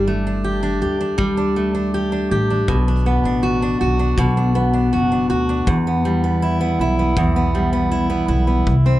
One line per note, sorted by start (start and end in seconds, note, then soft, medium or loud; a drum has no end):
0.00 0.77 G1 medium
0.00 1.17 G3 medium
0.00 0.26 D4 soft
0.00 0.10 G4 medium
0.07 1.55 A3 soft
0.27 0.62 D4 soft
0.44 0.81 G4 medium
0.63 1.00 D4 medium
0.81 2.27 D2 medium
0.81 1.93 G4 medium
1.01 1.37 D4 soft
1.18 2.75 G3 medium
1.18 kick loud
1.37 1.74 D4 medium
1.56 2.76 A3 soft
1.75 2.12 D4 soft
1.94 2.30 G4 medium
2.12 2.50 D4 medium
2.31 2.65 A1 medium
2.31 2.76 G4 medium
2.50 2.88 D4 soft
2.68 3.20 B1 medium
2.68 4.17 B2 medium
2.68 kick medium
2.88 3.24 D4 medium
3.06 4.55 B3 medium
3.24 3.76 A1 medium
3.24 3.61 D4 medium
3.43 3.80 F#4 medium
3.62 3.98 D4 medium
3.81 4.15 B1 medium
3.81 4.92 F#4 medium
3.99 4.36 D4 medium
4.18 4.89 B1 medium
4.18 5.75 B2 medium
4.18 kick medium
4.37 4.72 D4 medium
4.55 5.87 B3 medium
4.73 5.10 D4 medium
4.93 5.27 F#1 medium
4.93 5.28 F#4 medium
5.12 5.48 D4 soft
5.30 5.64 D2 medium
5.30 5.75 F#4 medium
5.49 5.75 D4 soft
5.67 6.75 E2 medium
5.67 7.16 E2 medium
5.67 kick medium
5.87 6.23 B3 soft
6.05 7.54 G3 medium
6.24 6.59 B3 soft
6.42 6.81 E4 medium
6.61 6.98 B3 medium
6.79 8.25 B1 medium
6.79 7.91 E4 medium
6.99 7.35 B3 medium
7.17 8.74 E2 medium
7.17 kick medium
7.36 7.72 B3 medium
7.55 8.74 G3 soft
7.73 8.09 B3 medium
7.92 8.28 E4 medium
8.10 8.46 B3 soft
8.28 8.63 B1 medium
8.28 8.99 E4 medium
8.47 8.74 B3 soft
8.67 8.99 C2 medium
8.67 kick medium
8.86 8.99 C4 medium